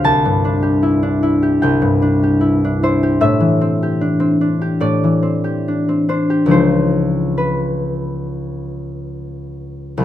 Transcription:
harp
Already playing: C4 G4 C5 G5
0.04 C2 A5
0.25 G2
0.45 D4
0.62 G4
0.83 E4
1.03 D4
1.23 E4
1.43 G4
1.62 C2 G5
1.82 G2
2.02 D4
2.23 G4
2.41 E4
2.64 D4
2.83 E4 C5
3.03 G4
3.21 A2 E5
3.40 E3
3.61 C4
3.83 G4
4.01 D4
4.20 C4
4.41 D4
4.61 G4
4.80 A2 D5
5.04 E3
5.22 C4
5.44 G4
5.68 D4
5.89 C4
6.09 D4 C5
6.30 G4
6.46 C#2 F3 G#3 D#4
6.51 C5
7.38 B4
9.97 C2 G3

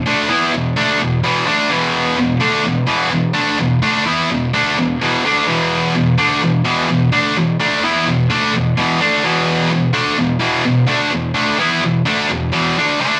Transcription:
distorted electric guitar
0.06 D3 A3 D4
0.29 E3 B3 E4
0.52 E2 B2
0.76 D3 A3 D4
0.99 E2 B2
1.24 E2 B2 E3
1.47 D3 A3 D4
1.70 E2 B2 E3
2.17 E2 B2
2.40 D3 A3 D4
2.64 E2 B2
2.86 E2 B2 E3
3.10 E2 B2
3.34 D3 A3 D4
3.58 E2 B2
3.82 D3 A3 D4
4.06 E3 B3 E4
4.30 E2 B2
4.54 D3 A3 D4
4.78 E2 B2
5.01 E2 B2 E3
5.25 D3 A3 D4
5.48 E2 B2 E3
5.95 E2 B2
6.18 D3 A3 D4
6.43 E2 B2
6.65 E2 B2 E3
6.89 E2 B2
7.12 D3 A3 D4
7.37 E2 B2
7.60 D3 A3 D4
7.84 E3 B3 E4
8.06 E2 B2
8.30 D3 A3 D4
8.53 E2 B2
8.77 E2 B2 E3
9.01 D3 A3 D4
9.23 E2 B2 E3
9.71 E2 B2
9.93 D3 A3 D4
10.18 E2 B2
10.40 E2 B2 E3
10.65 E2 B2
10.87 D3 A3 D4
11.11 E2 B2
11.34 D3 A3 D4
11.58 E3 B3 E4
11.81 E2 B2
12.05 D3 A3 D4
12.30 E2 B2
12.52 E2 B2 E3
12.78 D3 A3 D4
13.00 D3 A3 D4

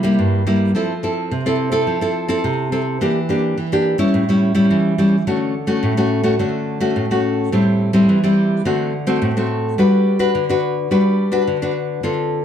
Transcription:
nylon-string guitar
Already playing: C3
0.03 G3 A#3 E4
0.19 G2
0.47 G3 A#3 E4
0.75 F3 C4 E4 A4
1.03 C4 E4 A4
1.31 C3
1.46 C4 E4 A4
1.72 C4 E4 A4
1.87 F3
2.01 C4 E4 A4
2.28 C4 E4 A4
2.44 C3
2.72 C4 E4 A4
3.01 E3 A#3 D4 G4
3.29 A#3 D4 G4
3.58 E3
3.72 A#3 D4 G4
3.98 G3 C#4 E4
4.14 A2
4.29 G3 C#4 E4
4.55 G3 C#4 E4
4.71 E3
4.98 G3 C#4 E4
5.27 D3 A3 C#4 F#4
5.67 A3 C#4 F#4
5.83 A2
5.97 A3 C#4 F#4
6.24 A3 C#4 F#4
6.39 D3 A3 C#4 F#4
6.80 A3 C#4 F#4
6.96 A2
7.11 A3 C#4 F#4
7.52 A2 G3 C4 E4
7.93 G3 C4 E4
8.09 E3
8.24 G3 C4 E4
8.65 D3 A3 C4 F#4
9.07 A3 C4 F#4
9.22 A2
9.37 A3 C4 F#4
9.78 G3 D4 F#4 B4
10.19 D4 F#4 B4
10.35 D3
10.49 D4 F#4 B4
10.91 G3 D4 F#4 B4
11.32 D4 F#4 B4
11.47 D3
11.62 D4 F#4 B4
12.03 D3 C4 F4 A4

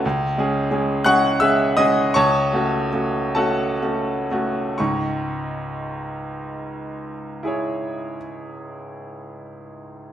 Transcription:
grand piano
0.06 C#2
0.38 G#3 C#4 G#4
0.71 G#3 C#4 G#4
1.04 G#3 C#4 G#4 F#5 C#6 F#6
1.40 G#3 C#4 G#4 E5 E6
1.77 G#3 C#4 G#4 D#5 D#6
2.14 C#2 C#5 A5 C#6
2.53 A3 C#4 F#4
2.93 A3 C#4 F#4
3.35 A3 C#4 F#4 A4 F#5 A5
3.82 A3 C#4 F#4
4.31 A3 C#4 F#4
4.78 C#2 G#2 C#6
7.43 E4 G#4
7.47 C#5

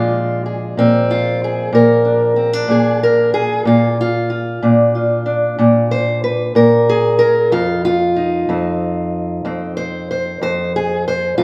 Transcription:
steel-string acoustic guitar
Already playing: A#2 F3 G#3 D4 F4
0.46 G#4
0.77 A#2 C4
1.11 F4
1.44 G#4
1.73 A#2 A#4
2.05 D4
2.36 C4
2.53 D4
2.68 A#2 G#4
3.03 A#4
3.34 G#4
3.65 A#2 F4
4.01 F4
4.30 F4
4.63 A#2 D4
4.95 F4
5.26 D4
5.59 A#2 D4
5.91 C5
6.24 B4
6.55 A#2 A#4
6.89 G#4
7.19 A#4
7.51 F2 F4
7.85 F4
8.16 D#4
8.49 F2 C4
9.45 F2 C4
9.77 C5
10.11 C5
10.41 F2 C5
10.76 G#4
11.08 C5
11.38 F2 F4

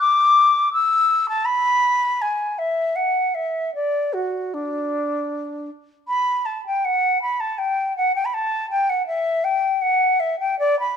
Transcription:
flute
0.00 D6
0.73 E6
1.29 A5
1.45 B5
2.21 G#5
2.58 E5
2.96 F#5
3.34 E5
3.75 D5
4.13 F#4
4.54 D4
6.08 B5
6.45 A5
6.66 G5
6.85 F#5
7.22 B5
7.40 A5
7.58 G5
7.97 F#5
8.15 G5
8.25 B5
8.34 A5
8.70 G5
8.89 F#5
9.07 E5
9.44 G5
9.81 F#5
10.20 E5
10.40 G5
10.59 D5
10.79 B5

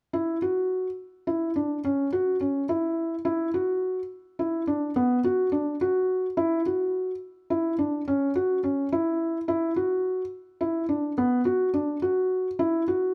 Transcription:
felt piano
0.13 E4
0.42 F#4
1.27 E4
1.56 D4
1.85 C#4
2.13 F#4
2.41 C#4
2.69 E4
3.25 E4
3.54 F#4
4.39 E4
4.67 D4
4.96 B3
5.24 F#4
5.52 D4
5.81 F#4
6.37 E4
6.66 F#4
7.50 E4
7.79 D4
8.08 C#4
8.35 F#4
8.64 C#4
8.92 E4
9.48 E4
9.76 F#4
10.61 E4
10.89 D4
11.18 B3
11.45 F#4
11.74 D4
12.02 F#4
12.59 E4
12.88 F#4

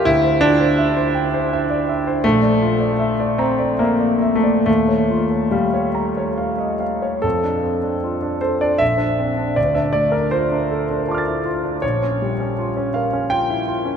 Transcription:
grand piano
0.05 D2 E4
0.24 C5
0.41 D4 F4
0.60 C5
0.78 E5
0.97 C5
1.15 G5
1.34 C5
1.53 E5
1.70 D5
1.89 E5
2.07 C5
2.24 A#1 A3
2.43 D5
2.62 F4
2.80 D5
3.00 E5
3.20 D5
3.38 C4 A#5
3.59 D5
3.79 A#3 E5
4.00 D5
4.22 E5
4.35 A3
4.44 D5
4.66 D#2 A3
4.88 C#5
5.10 F4
5.31 C#5
5.51 G3 F5
5.74 C#5
5.95 A#5
6.17 C#5
6.38 F5
6.58 D#5
6.80 F5
7.02 C#5
7.22 F2 A4
7.44 D4
7.63 C4
7.83 D4
8.04 F4
8.22 D4
8.41 A4 C5
8.61 D4 D5
8.78 A#1 E5
8.98 D4
9.19 C4
9.37 D4
9.56 D2 D5
9.75 D4 E5
9.93 A3 D5
10.12 D4 A#4
10.31 F4 C5
10.51 D4
10.71 A4
10.90 D4
11.09 F4 A5 D6
11.14 F6 A6
11.27 E4
11.45 F4
11.64 D4
11.82 A#1 C#5
12.02 C#4
12.22 G3
12.40 C#4
12.59 F4
12.77 C#4
12.94 A#4 F5
13.13 C#4
13.30 F4 G5
13.50 E4
13.68 F4
13.85 C#4

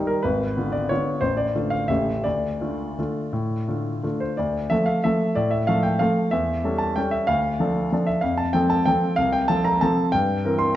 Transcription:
grand piano
Already playing: D#3 G3 D#4
0.07 A#4
0.23 G#1 B4
0.57 D3 B3 F4
0.72 D5
0.89 D3 B3 F4 C#5
1.21 A1 C5
1.37 D5
1.55 D3 A3 F4
1.70 F5
1.88 A1 C#3 A3 G4 E5
2.24 D2 D5
2.61 D3 A3 F4
2.99 D3 A3 F4
3.33 A2
3.68 D3 A3 F4
4.03 D3 A3 F4
4.20 C5
4.37 D2 D5
4.70 F3 A3 A4 E5
4.86 F5
5.04 F3 A3 A4 E5
5.35 A2 D5
5.51 E5
5.67 F3 A3 A4 F5
5.83 G5
5.99 F3 A3 A4 F5
6.31 E2 E5
6.64 G3 C#4 A4
6.78 A5
6.96 G3 C#4 A4 G5
7.11 E5
7.27 D2 F5
7.60 F3 D4 A4
7.92 F3 D4 A4
8.07 E5
8.21 F2 F5
8.38 A5
8.53 F3 C4 A4 G5
8.70 A5
8.86 F3 C4 A4 G5
9.16 C2 F5
9.32 G5
9.48 F3 C4 A4 A5
9.64 A#5
9.81 F3 C4 A4 A5
10.12 G2 G5
10.45 E3 C4 A#4
10.59 C6

